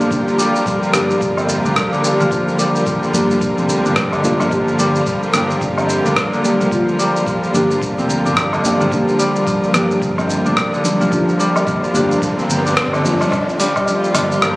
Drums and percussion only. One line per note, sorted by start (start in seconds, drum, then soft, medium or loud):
0.01 shaker soft
0.11 kick loud
0.11 shaker soft
0.28 shaker soft
0.39 shaker medium
0.56 shaker soft
0.66 kick loud
0.66 shaker soft
0.83 shaker soft
0.94 cross-stick medium
0.94 shaker medium
1.10 shaker soft
1.21 kick loud
1.21 shaker soft
1.37 low woodblock medium
1.37 shaker soft
1.48 udu medium
1.48 shaker medium
1.66 shaker soft
1.76 kick loud
1.76 cross-stick medium
1.76 shaker soft
1.93 shaker soft
2.04 shaker medium
2.21 shaker soft
2.31 kick loud
2.31 shaker soft
2.48 shaker soft
2.59 shaker medium
2.76 shaker soft
2.86 kick loud
2.86 shaker soft
3.03 shaker soft
3.14 udu medium
3.14 shaker medium
3.30 udu medium
3.30 shaker soft
3.41 kick loud
3.41 shaker soft
3.58 shaker soft
3.69 shaker medium
3.86 shaker soft
3.96 kick loud
3.96 cross-stick medium
3.96 shaker soft
4.12 udu medium
4.12 low woodblock medium
4.12 shaker soft
4.24 shaker medium
4.40 low woodblock medium
4.40 shaker soft
4.51 kick loud
4.51 shaker soft
4.68 shaker soft
4.79 shaker medium
4.95 shaker soft
5.06 kick loud
5.06 shaker soft
5.23 shaker soft
5.34 cross-stick medium
5.34 shaker medium
5.51 shaker soft
5.61 kick loud
5.61 shaker soft
5.78 low woodblock medium
5.78 shaker soft
5.89 udu medium
5.89 shaker medium
6.06 shaker soft
6.16 kick loud
6.16 cross-stick medium
6.16 shaker soft
6.33 shaker soft
6.45 shaker medium
6.61 shaker soft
6.71 kick loud
6.71 shaker soft
6.89 shaker soft
6.99 shaker medium
7.16 shaker soft
7.26 kick loud
7.26 shaker soft
7.43 shaker soft
7.54 shaker medium
7.71 shaker soft
7.82 kick medium
7.82 shaker soft
7.99 shaker soft
8.10 shaker medium
8.26 shaker soft
8.37 kick medium
8.37 cross-stick medium
8.37 shaker soft
8.53 udu medium
8.53 low woodblock medium
8.53 shaker soft
8.65 shaker medium
8.81 shaker soft
8.92 kick loud
8.92 shaker soft
9.08 shaker soft
9.19 shaker medium
9.36 shaker soft
9.47 kick medium
9.47 shaker soft
9.63 shaker soft
9.74 cross-stick medium
9.74 shaker medium
9.91 shaker soft
10.02 kick medium
10.02 shaker soft
10.18 low woodblock medium
10.18 shaker soft
10.29 udu medium
10.29 shaker medium
10.46 shaker soft
10.57 kick medium
10.57 cross-stick medium
10.57 shaker soft
10.74 shaker soft
10.85 shaker medium
11.01 shaker soft
11.12 kick medium
11.12 shaker soft
11.29 shaker soft
11.40 shaker medium
11.56 low woodblock medium
11.56 shaker soft
11.67 kick loud
11.67 shaker soft
11.84 shaker soft
11.94 udu medium
11.94 shaker medium
12.11 udu medium
12.11 shaker soft
12.22 kick medium
12.22 shaker soft
12.39 shaker soft
12.50 shaker medium
12.66 shaker soft
12.77 kick medium
12.77 cross-stick medium
12.77 shaker soft
12.93 udu medium
12.93 low woodblock medium
12.93 shaker soft
13.05 shaker medium
13.21 low woodblock medium
13.21 shaker soft
13.32 kick loud
13.32 low woodblock medium
13.32 shaker soft
13.49 shaker soft
13.60 open hi-hat medium
13.60 shaker medium
13.76 kick medium
13.76 low woodblock medium
13.76 shaker soft
13.88 shaker soft
14.04 shaker soft
14.15 open hi-hat medium
14.15 low woodblock medium
14.15 shaker medium
14.32 shaker soft
14.42 cross-stick medium
14.42 shaker soft